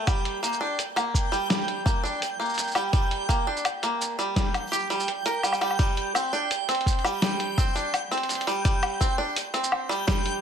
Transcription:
Already playing: G5 G6
0.07 G3, kick, closed hi-hat, low woodblock, shaker
0.25 closed hi-hat
0.43 A#3, shaker
0.53 shaker
0.61 D4
0.79 closed hi-hat, shaker
0.96 A#3, closed hi-hat, low woodblock, shaker
1.14 kick, shaker
1.32 G3, shaker
1.50 G3, snare, closed hi-hat, shaker
1.68 closed hi-hat
1.86 A#3, kick, shaker
2.04 D4, shaker
2.22 closed hi-hat, shaker
2.40 A#3, shaker
2.45 shaker
2.49 shaker
2.54 shaker
2.58 closed hi-hat, shaker
2.63 shaker
2.67 shaker
2.71 closed hi-hat, low woodblock, shaker
2.75 G3, shaker
2.93 G3, kick, closed hi-hat, shaker
3.11 closed hi-hat
3.29 A#3, kick, shaker
3.47 D4
3.57 shaker
3.65 closed hi-hat, low woodblock, shaker
3.83 A#3, closed hi-hat, shaker
4.01 shaker
4.19 G3, shaker
4.36 G3, kick, snare, closed hi-hat, shaker
4.54 closed hi-hat, low woodblock, shaker
4.67 shaker
4.72 G4, shaker
4.90 G3, closed hi-hat, shaker
5.00 shaker
5.08 closed hi-hat
5.26 A#4, closed hi-hat, shaker
5.43 G3, low woodblock, shaker
5.53 low woodblock, shaker
5.61 G3, closed hi-hat, low woodblock
5.71 low woodblock
5.79 G3, kick, closed hi-hat, shaker
5.97 closed hi-hat
6.15 C4, low woodblock, shaker
6.33 D4, shaker
6.51 closed hi-hat, shaker
6.69 C4, closed hi-hat, shaker
6.75 closed hi-hat
6.81 closed hi-hat
6.86 kick, closed hi-hat, shaker
6.93 closed hi-hat
6.99 closed hi-hat
7.04 G3, low woodblock, shaker
7.22 G3, snare, closed hi-hat, shaker
7.40 closed hi-hat
7.58 C4, kick, shaker
7.75 D4, closed hi-hat, shaker
7.94 closed hi-hat, low woodblock, shaker
8.11 C4, closed hi-hat, shaker
8.18 closed hi-hat
8.23 closed hi-hat
8.29 closed hi-hat, shaker
8.35 closed hi-hat
8.41 closed hi-hat
8.47 G3, closed hi-hat, shaker
8.65 G3, kick, closed hi-hat, shaker
8.83 closed hi-hat, low woodblock
9.01 C4, kick, shaker
9.18 D4
9.36 closed hi-hat, shaker
9.54 C4, closed hi-hat, shaker
9.64 shaker
9.72 low woodblock
9.89 G3, shaker
10.07 G3, kick, snare, closed hi-hat, shaker
10.26 closed hi-hat

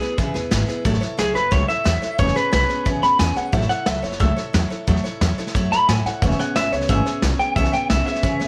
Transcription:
Already playing: G#4
0.01 B3 E4 G#4 B4, muted upright bass stroke, snare
0.18 C#2 C#3 E3 B3 E4 G#4 B4, kick, snare
0.34 E2 B3 E4 G#4 B4, snare
0.51 G#1 B3 E4 G#4 B4, snare, hi-hat pedal
0.68 B3 E4 G#4 B4, muted upright bass stroke, snare
0.85 A1 F#3 A3 E4 A4 C#5, kick, snare
0.94 snare
1.01 E4 A4 C#5, muted upright bass stroke, snare
1.17 C#2 F#3 E4 G#4 A4 C#5, snare, hi-hat pedal
1.34 F#1 E4 A4 B4 C#5, snare
1.51 C#2 F#3 A3 E4 A4 C#5, kick, snare
1.68 E4 A4 C#5 E5, snare
1.84 E2 F#3 E4 A4 C#5, snare, hi-hat pedal
2.02 E4 A4 C#5, muted upright bass stroke, snare
2.18 E1 C#3 E3 B3 C#4 G#4 C#5, kick, snare
2.27 snare
2.35 B3 C#4 G#4 B4 C#5, snare
2.52 B1 B3 C#4 G#4 B4 C#5, snare, hi-hat pedal
2.69 B3 C#4 G#4 C#5, muted upright bass stroke, snare
2.85 C#2 C#3 E3 B3 C#4 G#4 C#5, kick, snare
3.02 E2 B3 C#4 G#4 C#5 B5, snare
3.19 E2 B3 C#4 G#4 C#5 G#5, snare, hi-hat pedal
3.36 B3 C#4 G#4 C#5 F#5, muted upright bass stroke, snare
3.52 A1 F#3 A3 E4 A4 C#5 E5, kick, snare
3.61 snare
3.69 E4 A4 C#5 F#5, snare
3.86 C#2 F#3 E4 A4 C#5 E5, snare, hi-hat pedal
4.02 F#1 E4 A4 C#5, snare
4.12 snare
4.20 C#2 F#3 A3 E4 A4 C#5 E5, kick, snare
4.37 E4 A4 C#5, snare
4.53 E2 F#3 E4 A4 C#5, snare, hi-hat pedal
4.70 E4 A4 C#5, muted upright bass stroke, snare
4.87 E2 F#3 A3 E4 A4 C#5, kick, snare
4.96 snare
5.04 E4 A4 C#5, muted upright bass stroke, snare
5.21 E2 F#3 E4 A4 C#5, snare, hi-hat pedal
5.38 E4 A4 C#5, muted upright bass stroke, snare
5.47 snare
5.55 F#2 F#3 A3 E4 A4 C#5, kick, snare
5.72 A2 E4 A4 C#5 B5, snare
5.88 A2 F#3 E4 A4 C#5 G#5, snare, hi-hat pedal
6.05 E4 A4 C#5 F#5, muted upright bass stroke, snare
6.22 E1 C#3 E3 B3 C#4 G#4 C#5 E5, kick, snare
6.31 snare
6.38 B3 C#4 G#4 C#5 F#5, muted upright bass stroke, snare
6.55 G#1 B3 C#4 G#4 C#5 E5, snare, hi-hat pedal
6.72 C#2 B3 C#4 G#4 C#5, snare
6.81 snare
6.88 G#1 C#3 E3 B3 C#4 G#4 C#5 E5, kick, snare
7.06 B3 C#4 G#4 C#5, snare
7.22 B1 B3 C#4 G#4 C#5, snare, hi-hat pedal
7.39 B3 C#4 G#4 C#5 G5, muted upright bass stroke, snare
7.56 B1 C#3 E3 B3 C#4 G#4 C#5 E5, kick, snare
7.65 snare
7.73 B3 C#4 G#4 C#5 G5, snare
7.90 B1 B3 C#4 G#4 C#5 E5, snare, hi-hat pedal
8.06 B3 C#4 G#4 C#5 E5, muted upright bass stroke, snare
8.15 snare
8.23 C#2 C#3 E3 B3 C#4 G#4 C#5, kick, snare
8.40 E2 B3 C#4 G#4 C#5, snare

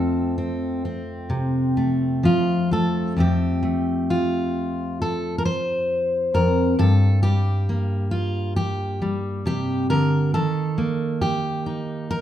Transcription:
Already playing: F2 F3 A3 C4 A4
0.38 C4
0.85 C4
1.30 C3
1.77 A3
2.23 F3 F4
2.71 A3 A4
3.16 F2 A3 C4 G4
3.63 A3
4.10 F4
5.02 A4
5.38 A#4
5.45 C5
6.34 F2 A#4
6.79 G2 A4
7.23 G3 G4
7.69 A#3
8.11 F4
8.56 G4
9.02 G3
9.46 C3 G4
9.90 D3 A#4
10.34 D#3 A4
10.78 A#3
11.21 G4
11.66 D#4
12.11 A#4

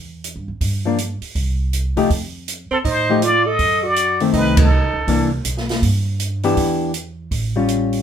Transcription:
Already playing: E2
0.24 closed hi-hat
0.36 G2
0.48 F2
0.61 G2, kick, open hi-hat
0.85 F3 A#3 D4
0.98 closed hi-hat
1.21 muted upright bass stroke, open hi-hat
1.35 C2, kick, open hi-hat
1.73 closed hi-hat
1.96 C3 F3 A3 D#4 G4, open hi-hat
2.10 F2, kick, open hi-hat
2.48 closed hi-hat
2.71 C4 A4, muted upright bass stroke
2.84 A2 D#4 C5, kick, open hi-hat
3.10 F3 A3 D#4 G4
3.22 F4 D5, closed hi-hat
3.46 A4 D#5
3.59 F#2, kick, open hi-hat
3.83 F#4 D5
3.96 closed hi-hat
4.20 D#3 A3 C4, open hi-hat
4.33 C2 D#4 B4, kick, open hi-hat
4.57 D#4, kick, ride
4.61 A4
4.93 C#2
5.07 C2 E3 A#3 D4, kick, open hi-hat
5.45 B1, closed hi-hat
5.57 snare
5.69 snare, open hi-hat
5.82 G2, kick, open hi-hat
6.20 closed hi-hat
6.43 E3 B3 D4 G4, open hi-hat
6.57 E2, kick, open hi-hat
6.94 closed hi-hat
7.31 A1, kick, open hi-hat
7.56 G3 C#4 F4
7.68 closed hi-hat
7.93 open hi-hat

